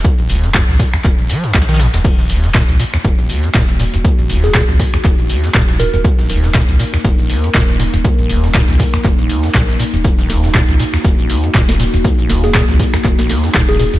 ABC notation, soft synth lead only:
X:1
M:4/4
L:1/16
Q:"Swing 16ths" 1/4=120
K:Ebm
V:1 name="Soft synth lead"
z16 | z16 | z3 A A z8 z B B | z16 |
z16 | z16 | z3 A A z8 A A z |]